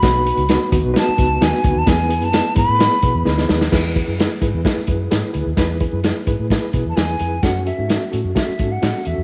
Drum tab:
CC |----------------|----------------|x---------------|----------------|
HH |x-xxx-x-x-x-x-x-|x-xxx-x-x-x-----|--x-x-x-x-x-x-x-|x-x-x-x-x-x-x-x-|
SD |o---o---o---oo--|o---o---o---oooo|o---o---o---o---|o---o---o---o---|
BD |o-----o---o---o-|o-----o---o-----|o-o---o-o-o-----|o-o---o-o-o-----|

CC |----------------|
HH |x-x-x-x-x-x-x-x-|
SD |o---o---o---oo--|
BD |o-------o-o-----|